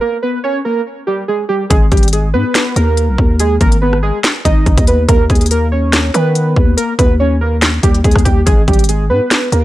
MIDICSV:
0, 0, Header, 1, 4, 480
1, 0, Start_track
1, 0, Key_signature, 5, "minor"
1, 0, Tempo, 422535
1, 17, Time_signature, 4, 2, 24, 8
1, 10956, End_track
2, 0, Start_track
2, 0, Title_t, "Synth keys"
2, 0, Program_c, 0, 88
2, 11, Note_on_c, 0, 70, 87
2, 20, Note_on_c, 0, 58, 66
2, 195, Note_off_c, 0, 70, 0
2, 201, Note_off_c, 0, 58, 0
2, 257, Note_on_c, 0, 71, 80
2, 266, Note_on_c, 0, 59, 59
2, 439, Note_off_c, 0, 71, 0
2, 445, Note_off_c, 0, 59, 0
2, 497, Note_on_c, 0, 73, 87
2, 506, Note_on_c, 0, 61, 73
2, 679, Note_off_c, 0, 73, 0
2, 684, Note_off_c, 0, 61, 0
2, 737, Note_on_c, 0, 70, 78
2, 747, Note_on_c, 0, 58, 65
2, 919, Note_off_c, 0, 70, 0
2, 925, Note_off_c, 0, 58, 0
2, 1215, Note_on_c, 0, 67, 82
2, 1224, Note_on_c, 0, 55, 71
2, 1398, Note_off_c, 0, 67, 0
2, 1403, Note_off_c, 0, 55, 0
2, 1457, Note_on_c, 0, 68, 83
2, 1466, Note_on_c, 0, 56, 61
2, 1639, Note_off_c, 0, 68, 0
2, 1644, Note_off_c, 0, 56, 0
2, 1690, Note_on_c, 0, 67, 89
2, 1699, Note_on_c, 0, 55, 62
2, 1875, Note_off_c, 0, 67, 0
2, 1880, Note_off_c, 0, 55, 0
2, 1929, Note_on_c, 0, 68, 98
2, 1938, Note_on_c, 0, 56, 70
2, 2114, Note_off_c, 0, 68, 0
2, 2120, Note_off_c, 0, 56, 0
2, 2182, Note_on_c, 0, 67, 77
2, 2191, Note_on_c, 0, 55, 61
2, 2362, Note_off_c, 0, 67, 0
2, 2368, Note_off_c, 0, 55, 0
2, 2420, Note_on_c, 0, 68, 74
2, 2429, Note_on_c, 0, 56, 66
2, 2600, Note_off_c, 0, 68, 0
2, 2606, Note_off_c, 0, 56, 0
2, 2655, Note_on_c, 0, 71, 90
2, 2664, Note_on_c, 0, 59, 68
2, 3107, Note_off_c, 0, 71, 0
2, 3112, Note_off_c, 0, 59, 0
2, 3135, Note_on_c, 0, 70, 76
2, 3144, Note_on_c, 0, 58, 60
2, 3813, Note_off_c, 0, 70, 0
2, 3818, Note_off_c, 0, 58, 0
2, 3862, Note_on_c, 0, 68, 102
2, 3870, Note_on_c, 0, 56, 76
2, 4042, Note_off_c, 0, 68, 0
2, 4047, Note_off_c, 0, 56, 0
2, 4102, Note_on_c, 0, 70, 86
2, 4111, Note_on_c, 0, 58, 56
2, 4282, Note_off_c, 0, 70, 0
2, 4288, Note_off_c, 0, 58, 0
2, 4335, Note_on_c, 0, 71, 80
2, 4345, Note_on_c, 0, 59, 64
2, 4518, Note_off_c, 0, 71, 0
2, 4524, Note_off_c, 0, 59, 0
2, 4575, Note_on_c, 0, 68, 88
2, 4584, Note_on_c, 0, 56, 77
2, 4758, Note_off_c, 0, 68, 0
2, 4763, Note_off_c, 0, 56, 0
2, 5053, Note_on_c, 0, 75, 79
2, 5062, Note_on_c, 0, 63, 64
2, 5507, Note_off_c, 0, 75, 0
2, 5511, Note_off_c, 0, 63, 0
2, 5542, Note_on_c, 0, 71, 77
2, 5550, Note_on_c, 0, 59, 56
2, 5722, Note_off_c, 0, 71, 0
2, 5727, Note_off_c, 0, 59, 0
2, 5775, Note_on_c, 0, 70, 108
2, 5784, Note_on_c, 0, 58, 82
2, 5958, Note_off_c, 0, 70, 0
2, 5963, Note_off_c, 0, 58, 0
2, 6024, Note_on_c, 0, 68, 84
2, 6033, Note_on_c, 0, 56, 57
2, 6203, Note_off_c, 0, 68, 0
2, 6209, Note_off_c, 0, 56, 0
2, 6262, Note_on_c, 0, 70, 89
2, 6271, Note_on_c, 0, 58, 65
2, 6442, Note_off_c, 0, 70, 0
2, 6448, Note_off_c, 0, 58, 0
2, 6496, Note_on_c, 0, 73, 86
2, 6506, Note_on_c, 0, 61, 62
2, 6948, Note_off_c, 0, 73, 0
2, 6953, Note_off_c, 0, 61, 0
2, 6981, Note_on_c, 0, 71, 88
2, 6990, Note_on_c, 0, 59, 66
2, 7656, Note_off_c, 0, 71, 0
2, 7661, Note_off_c, 0, 59, 0
2, 7693, Note_on_c, 0, 70, 87
2, 7701, Note_on_c, 0, 58, 72
2, 7876, Note_off_c, 0, 70, 0
2, 7881, Note_off_c, 0, 58, 0
2, 7938, Note_on_c, 0, 71, 83
2, 7947, Note_on_c, 0, 59, 58
2, 8119, Note_off_c, 0, 71, 0
2, 8125, Note_off_c, 0, 59, 0
2, 8177, Note_on_c, 0, 73, 86
2, 8186, Note_on_c, 0, 61, 77
2, 8359, Note_off_c, 0, 73, 0
2, 8365, Note_off_c, 0, 61, 0
2, 8418, Note_on_c, 0, 70, 79
2, 8428, Note_on_c, 0, 58, 66
2, 8600, Note_off_c, 0, 70, 0
2, 8605, Note_off_c, 0, 58, 0
2, 8897, Note_on_c, 0, 67, 83
2, 8906, Note_on_c, 0, 55, 69
2, 9079, Note_off_c, 0, 67, 0
2, 9084, Note_off_c, 0, 55, 0
2, 9139, Note_on_c, 0, 68, 84
2, 9147, Note_on_c, 0, 56, 62
2, 9320, Note_off_c, 0, 68, 0
2, 9325, Note_off_c, 0, 56, 0
2, 9372, Note_on_c, 0, 67, 88
2, 9381, Note_on_c, 0, 55, 63
2, 9556, Note_off_c, 0, 67, 0
2, 9561, Note_off_c, 0, 55, 0
2, 9610, Note_on_c, 0, 68, 93
2, 9620, Note_on_c, 0, 56, 72
2, 9795, Note_off_c, 0, 68, 0
2, 9801, Note_off_c, 0, 56, 0
2, 9862, Note_on_c, 0, 67, 75
2, 9871, Note_on_c, 0, 55, 62
2, 10042, Note_off_c, 0, 67, 0
2, 10048, Note_off_c, 0, 55, 0
2, 10099, Note_on_c, 0, 68, 73
2, 10108, Note_on_c, 0, 56, 65
2, 10280, Note_off_c, 0, 68, 0
2, 10286, Note_off_c, 0, 56, 0
2, 10336, Note_on_c, 0, 71, 93
2, 10344, Note_on_c, 0, 59, 67
2, 10788, Note_off_c, 0, 71, 0
2, 10792, Note_off_c, 0, 59, 0
2, 10816, Note_on_c, 0, 70, 75
2, 10826, Note_on_c, 0, 58, 61
2, 10956, Note_off_c, 0, 58, 0
2, 10956, Note_off_c, 0, 70, 0
2, 10956, End_track
3, 0, Start_track
3, 0, Title_t, "808-style bass"
3, 0, Program_c, 1, 38
3, 1937, Note_on_c, 1, 32, 109
3, 2168, Note_off_c, 1, 32, 0
3, 2178, Note_on_c, 1, 32, 106
3, 2658, Note_on_c, 1, 44, 103
3, 2675, Note_off_c, 1, 32, 0
3, 2778, Note_off_c, 1, 44, 0
3, 3137, Note_on_c, 1, 39, 109
3, 3506, Note_on_c, 1, 35, 99
3, 3523, Note_off_c, 1, 39, 0
3, 3610, Note_off_c, 1, 35, 0
3, 3617, Note_on_c, 1, 39, 100
3, 4078, Note_off_c, 1, 39, 0
3, 4098, Note_on_c, 1, 32, 104
3, 4681, Note_off_c, 1, 32, 0
3, 5058, Note_on_c, 1, 32, 102
3, 5288, Note_off_c, 1, 32, 0
3, 5297, Note_on_c, 1, 32, 109
3, 5417, Note_off_c, 1, 32, 0
3, 5424, Note_on_c, 1, 39, 104
3, 5763, Note_off_c, 1, 39, 0
3, 5777, Note_on_c, 1, 39, 112
3, 6008, Note_off_c, 1, 39, 0
3, 6018, Note_on_c, 1, 39, 104
3, 6940, Note_off_c, 1, 39, 0
3, 6977, Note_on_c, 1, 51, 102
3, 7438, Note_off_c, 1, 51, 0
3, 7457, Note_on_c, 1, 39, 105
3, 7687, Note_off_c, 1, 39, 0
3, 7938, Note_on_c, 1, 39, 103
3, 8860, Note_off_c, 1, 39, 0
3, 8898, Note_on_c, 1, 39, 106
3, 9128, Note_off_c, 1, 39, 0
3, 9138, Note_on_c, 1, 39, 103
3, 9260, Note_off_c, 1, 39, 0
3, 9264, Note_on_c, 1, 39, 103
3, 9370, Note_off_c, 1, 39, 0
3, 9376, Note_on_c, 1, 39, 100
3, 9607, Note_off_c, 1, 39, 0
3, 9617, Note_on_c, 1, 32, 111
3, 9848, Note_off_c, 1, 32, 0
3, 9858, Note_on_c, 1, 32, 108
3, 10337, Note_on_c, 1, 44, 103
3, 10354, Note_off_c, 1, 32, 0
3, 10458, Note_off_c, 1, 44, 0
3, 10818, Note_on_c, 1, 39, 107
3, 10956, Note_off_c, 1, 39, 0
3, 10956, End_track
4, 0, Start_track
4, 0, Title_t, "Drums"
4, 1937, Note_on_c, 9, 36, 126
4, 1937, Note_on_c, 9, 42, 92
4, 2050, Note_off_c, 9, 42, 0
4, 2051, Note_off_c, 9, 36, 0
4, 2177, Note_on_c, 9, 42, 43
4, 2178, Note_on_c, 9, 36, 98
4, 2241, Note_off_c, 9, 42, 0
4, 2241, Note_on_c, 9, 42, 52
4, 2292, Note_off_c, 9, 36, 0
4, 2304, Note_off_c, 9, 42, 0
4, 2304, Note_on_c, 9, 42, 61
4, 2361, Note_off_c, 9, 42, 0
4, 2361, Note_on_c, 9, 42, 73
4, 2417, Note_off_c, 9, 42, 0
4, 2417, Note_on_c, 9, 42, 84
4, 2531, Note_off_c, 9, 42, 0
4, 2896, Note_on_c, 9, 42, 75
4, 2897, Note_on_c, 9, 38, 120
4, 2907, Note_on_c, 9, 26, 96
4, 3010, Note_off_c, 9, 38, 0
4, 3010, Note_off_c, 9, 42, 0
4, 3021, Note_off_c, 9, 26, 0
4, 3139, Note_on_c, 9, 42, 74
4, 3252, Note_off_c, 9, 42, 0
4, 3378, Note_on_c, 9, 42, 66
4, 3491, Note_off_c, 9, 42, 0
4, 3617, Note_on_c, 9, 36, 80
4, 3730, Note_off_c, 9, 36, 0
4, 3857, Note_on_c, 9, 42, 92
4, 3970, Note_off_c, 9, 42, 0
4, 4097, Note_on_c, 9, 42, 58
4, 4098, Note_on_c, 9, 36, 94
4, 4211, Note_off_c, 9, 42, 0
4, 4212, Note_off_c, 9, 36, 0
4, 4225, Note_on_c, 9, 42, 59
4, 4338, Note_off_c, 9, 42, 0
4, 4464, Note_on_c, 9, 37, 67
4, 4578, Note_off_c, 9, 37, 0
4, 4816, Note_on_c, 9, 42, 71
4, 4817, Note_on_c, 9, 38, 115
4, 4828, Note_on_c, 9, 26, 93
4, 4930, Note_off_c, 9, 38, 0
4, 4930, Note_off_c, 9, 42, 0
4, 4941, Note_off_c, 9, 26, 0
4, 5057, Note_on_c, 9, 36, 81
4, 5058, Note_on_c, 9, 42, 74
4, 5171, Note_off_c, 9, 36, 0
4, 5172, Note_off_c, 9, 42, 0
4, 5297, Note_on_c, 9, 36, 89
4, 5297, Note_on_c, 9, 42, 41
4, 5411, Note_off_c, 9, 36, 0
4, 5411, Note_off_c, 9, 42, 0
4, 5424, Note_on_c, 9, 36, 99
4, 5424, Note_on_c, 9, 42, 69
4, 5536, Note_off_c, 9, 42, 0
4, 5536, Note_on_c, 9, 42, 84
4, 5538, Note_off_c, 9, 36, 0
4, 5650, Note_off_c, 9, 42, 0
4, 5777, Note_on_c, 9, 42, 93
4, 5778, Note_on_c, 9, 36, 126
4, 5891, Note_off_c, 9, 36, 0
4, 5891, Note_off_c, 9, 42, 0
4, 6018, Note_on_c, 9, 36, 95
4, 6018, Note_on_c, 9, 42, 44
4, 6082, Note_off_c, 9, 42, 0
4, 6082, Note_on_c, 9, 42, 53
4, 6132, Note_off_c, 9, 36, 0
4, 6146, Note_off_c, 9, 42, 0
4, 6146, Note_on_c, 9, 42, 61
4, 6202, Note_off_c, 9, 42, 0
4, 6202, Note_on_c, 9, 42, 73
4, 6258, Note_off_c, 9, 42, 0
4, 6258, Note_on_c, 9, 42, 87
4, 6372, Note_off_c, 9, 42, 0
4, 6737, Note_on_c, 9, 38, 114
4, 6737, Note_on_c, 9, 42, 72
4, 6748, Note_on_c, 9, 26, 94
4, 6850, Note_off_c, 9, 42, 0
4, 6851, Note_off_c, 9, 38, 0
4, 6862, Note_off_c, 9, 26, 0
4, 6979, Note_on_c, 9, 42, 73
4, 7093, Note_off_c, 9, 42, 0
4, 7218, Note_on_c, 9, 42, 64
4, 7331, Note_off_c, 9, 42, 0
4, 7457, Note_on_c, 9, 36, 86
4, 7571, Note_off_c, 9, 36, 0
4, 7698, Note_on_c, 9, 42, 94
4, 7812, Note_off_c, 9, 42, 0
4, 7938, Note_on_c, 9, 36, 98
4, 7940, Note_on_c, 9, 42, 70
4, 8052, Note_off_c, 9, 36, 0
4, 8054, Note_off_c, 9, 42, 0
4, 8656, Note_on_c, 9, 42, 74
4, 8657, Note_on_c, 9, 38, 121
4, 8668, Note_on_c, 9, 26, 94
4, 8770, Note_off_c, 9, 42, 0
4, 8771, Note_off_c, 9, 38, 0
4, 8781, Note_off_c, 9, 26, 0
4, 8897, Note_on_c, 9, 36, 82
4, 8898, Note_on_c, 9, 42, 75
4, 9011, Note_off_c, 9, 36, 0
4, 9011, Note_off_c, 9, 42, 0
4, 9025, Note_on_c, 9, 42, 42
4, 9137, Note_on_c, 9, 36, 89
4, 9138, Note_off_c, 9, 42, 0
4, 9138, Note_on_c, 9, 42, 53
4, 9218, Note_off_c, 9, 42, 0
4, 9218, Note_on_c, 9, 42, 54
4, 9251, Note_off_c, 9, 36, 0
4, 9265, Note_on_c, 9, 36, 96
4, 9265, Note_on_c, 9, 37, 93
4, 9298, Note_off_c, 9, 42, 0
4, 9298, Note_on_c, 9, 42, 57
4, 9377, Note_off_c, 9, 36, 0
4, 9377, Note_off_c, 9, 42, 0
4, 9377, Note_on_c, 9, 36, 83
4, 9377, Note_on_c, 9, 42, 82
4, 9378, Note_off_c, 9, 37, 0
4, 9490, Note_off_c, 9, 36, 0
4, 9491, Note_off_c, 9, 42, 0
4, 9618, Note_on_c, 9, 36, 127
4, 9618, Note_on_c, 9, 42, 93
4, 9731, Note_off_c, 9, 36, 0
4, 9731, Note_off_c, 9, 42, 0
4, 9858, Note_on_c, 9, 36, 99
4, 9858, Note_on_c, 9, 42, 44
4, 9922, Note_off_c, 9, 42, 0
4, 9922, Note_on_c, 9, 42, 52
4, 9972, Note_off_c, 9, 36, 0
4, 9986, Note_off_c, 9, 42, 0
4, 9986, Note_on_c, 9, 42, 63
4, 10042, Note_off_c, 9, 42, 0
4, 10042, Note_on_c, 9, 42, 73
4, 10098, Note_off_c, 9, 42, 0
4, 10098, Note_on_c, 9, 42, 84
4, 10211, Note_off_c, 9, 42, 0
4, 10576, Note_on_c, 9, 42, 71
4, 10577, Note_on_c, 9, 38, 118
4, 10588, Note_on_c, 9, 26, 97
4, 10690, Note_off_c, 9, 38, 0
4, 10690, Note_off_c, 9, 42, 0
4, 10701, Note_off_c, 9, 26, 0
4, 10819, Note_on_c, 9, 42, 76
4, 10933, Note_off_c, 9, 42, 0
4, 10956, End_track
0, 0, End_of_file